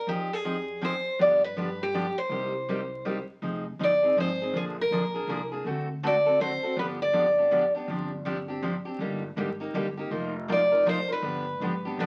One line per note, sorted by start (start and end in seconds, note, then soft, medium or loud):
0.07 0.96 F2 medium
0.07 0.29 F3 soft
0.07 0.29 C4 medium
0.07 0.29 D#4 medium
0.07 0.33 G4 medium
0.07 0.29 G#4 medium
0.33 0.85 G#4 medium
0.44 0.56 F3 medium
0.44 0.56 C4 medium
0.44 0.56 D#4 medium
0.44 0.56 G#4 medium
0.81 0.93 F3 medium
0.81 0.93 C4 medium
0.81 0.93 D#4 medium
0.81 0.94 G#4 medium
0.81 1.21 C5 medium
1.19 2.09 G2 medium
1.19 1.40 D3 medium
1.19 1.40 F3 medium
1.19 1.41 B3 medium
1.19 1.41 D4 medium
1.19 1.41 G4 medium
1.19 1.44 D5 medium
1.44 1.82 B4 medium
1.57 1.68 D3 medium
1.57 1.68 F3 medium
1.57 1.68 B3 medium
1.57 1.68 D4 medium
1.57 1.68 G4 medium
1.83 2.16 G4 medium
1.94 2.05 D3 medium
1.94 2.05 F3 medium
1.94 2.05 B3 medium
1.94 2.05 D4 medium
1.94 2.06 G4 loud
2.18 3.25 C5 medium
2.29 3.19 C2 medium
2.29 2.52 C3 medium
2.29 2.52 G3 medium
2.29 2.52 A#3 medium
2.29 2.52 D#4 medium
2.29 2.53 G4 medium
2.69 2.80 C3 medium
2.69 2.80 G3 medium
2.69 2.80 A#3 medium
2.69 2.80 D#4 medium
2.69 2.80 G4 medium
3.05 3.16 C3 medium
3.05 3.16 G3 medium
3.05 3.17 A#3 medium
3.05 3.17 D#4 medium
3.05 3.17 G4 medium
3.42 3.72 F1 medium
3.42 3.64 F3 soft
3.42 3.64 C4 medium
3.42 3.64 D#4 medium
3.42 3.64 G#4 medium
3.79 4.11 G1 medium
3.79 3.91 F3 medium
3.79 3.91 C4 medium
3.79 3.91 D#4 medium
3.79 3.91 G#4 medium
3.84 4.16 D5 medium
4.03 4.16 C4 soft
4.03 4.17 D#4 medium
4.03 4.16 G#4 medium
4.16 4.48 G#1 medium
4.16 4.28 F3 medium
4.16 4.28 C4 medium
4.16 4.29 D#4 medium
4.16 4.29 G#4 medium
4.16 4.57 C5 medium
4.42 4.54 C4 soft
4.42 4.55 D#4 soft
4.42 4.54 G#4 medium
4.53 4.83 A#1 medium
4.53 4.75 D3 soft
4.53 4.75 F3 medium
4.53 4.75 A#3 soft
4.53 4.76 D4 medium
4.53 4.76 G#4 medium
4.53 4.62 G#4 medium
4.81 5.50 A#4 medium
4.90 5.22 A#1 medium
4.90 5.03 D3 medium
4.90 5.03 F3 medium
4.90 5.03 A#3 medium
4.90 5.03 D4 medium
4.90 5.03 G#4 medium
5.14 5.28 A#3 soft
5.14 5.28 D4 soft
5.14 5.28 G#4 soft
5.27 5.59 C2 medium
5.27 5.40 D3 medium
5.27 5.40 F3 medium
5.27 5.40 A#3 loud
5.27 5.40 D4 medium
5.27 5.40 G#4 medium
5.52 5.66 A#3 soft
5.52 5.65 D4 soft
5.52 5.65 G#4 medium
5.65 6.54 D2 medium
5.65 5.87 D3 soft
5.65 5.87 A3 medium
5.65 5.87 C4 medium
5.65 5.87 F#4 medium
5.65 5.88 A4 medium
6.03 6.14 D3 medium
6.03 6.14 A3 medium
6.03 6.14 C4 medium
6.03 6.14 F#4 medium
6.03 6.15 A4 medium
6.03 6.39 D5 medium
6.26 6.39 C4 soft
6.26 6.39 F#4 medium
6.26 6.39 A4 medium
6.40 6.51 D3 medium
6.40 6.51 A3 medium
6.40 6.51 C4 medium
6.40 6.52 F#4 medium
6.40 6.52 A4 medium
6.40 6.79 C5 medium
6.63 6.77 C4 soft
6.63 6.77 F#4 soft
6.63 6.76 A4 medium
6.76 7.66 G1 medium
6.76 6.98 D3 medium
6.76 6.98 F3 medium
6.76 6.98 B3 medium
6.76 6.99 D4 medium
6.76 6.99 G4 medium
6.76 6.85 B4 medium
7.02 7.72 D5 medium
7.13 7.25 D3 medium
7.13 7.25 F3 medium
7.13 7.25 B3 medium
7.13 7.25 D4 medium
7.13 7.25 G4 medium
7.38 7.50 B3 soft
7.38 7.51 D4 soft
7.38 7.51 G4 medium
7.51 7.63 D3 medium
7.51 7.63 F3 medium
7.51 7.63 B3 medium
7.51 7.63 D4 medium
7.51 7.63 G4 medium
7.74 7.89 B3 soft
7.74 7.89 D4 soft
7.74 7.88 G4 medium
7.88 8.77 G1 medium
7.88 8.10 C3 medium
7.88 8.10 F3 medium
7.88 8.10 C4 medium
7.88 8.11 D4 medium
7.88 8.11 G4 medium
8.25 8.37 C3 medium
8.25 8.37 F3 medium
8.25 8.37 C4 medium
8.25 8.37 D4 medium
8.25 8.37 G4 medium
8.48 8.62 C4 soft
8.48 8.62 D4 soft
8.48 8.62 G4 medium
8.62 8.74 C3 medium
8.62 8.74 F3 medium
8.62 8.74 C4 medium
8.62 8.74 D4 medium
8.62 8.74 G4 medium
8.85 9.00 C4 soft
8.85 9.00 D4 soft
8.85 8.99 G4 medium
8.99 9.29 G1 medium
8.99 9.22 D3 medium
8.99 9.22 G3 medium
8.99 9.22 A#3 medium
8.99 9.22 D#4 medium
8.99 9.22 G4 medium
9.36 9.68 G#1 medium
9.36 9.48 D3 medium
9.36 9.49 G3 medium
9.36 9.49 A#3 medium
9.36 9.49 D#4 medium
9.36 9.49 G4 medium
9.60 9.74 A#3 soft
9.60 9.74 D#4 medium
9.60 9.74 G4 medium
9.74 10.06 G1 medium
9.74 9.86 D3 medium
9.74 9.86 G3 medium
9.74 9.86 A#3 medium
9.74 9.86 D#4 medium
9.74 9.86 G4 loud
9.97 10.10 A#3 soft
9.97 10.10 D#4 medium
9.97 10.11 G4 medium
10.11 11.00 F1 medium
10.11 10.33 F3 medium
10.11 10.33 A#3 medium
10.11 10.33 D#4 medium
10.11 10.33 F4 medium
10.11 10.33 A#4 medium
10.48 10.60 F3 medium
10.48 10.60 A#3 medium
10.48 10.60 D#4 loud
10.48 10.61 F4 loud
10.48 10.61 A#4 loud
10.52 10.89 D5 medium
10.72 10.85 D#4 soft
10.72 10.85 F4 medium
10.72 10.85 A#4 medium
10.86 10.97 F3 medium
10.86 10.98 A#3 medium
10.86 10.98 D#4 medium
10.86 10.98 F4 loud
10.86 10.98 A#4 loud
10.86 11.12 C5 loud
11.08 11.23 D#4 soft
11.08 11.23 F4 medium
11.08 11.22 A#4 medium
11.12 11.99 B4 medium
11.22 11.53 G1 medium
11.22 11.45 D3 medium
11.22 11.45 F3 soft
11.22 11.45 B3 medium
11.22 11.45 D4 medium
11.22 11.45 G4 medium
11.60 11.92 G#1 medium
11.60 11.72 D3 medium
11.60 11.73 F3 medium
11.60 11.73 B3 medium
11.60 11.73 D4 medium
11.60 11.73 G4 medium
11.85 11.99 B3 soft
11.85 11.98 D4 medium
11.85 11.98 G4 medium
11.97 12.06 B1 medium
11.97 12.06 D3 medium
11.97 12.06 F3 medium
11.97 12.06 B3 medium
11.97 12.06 D4 medium
11.97 12.06 G4 medium
11.97 12.06 B4 medium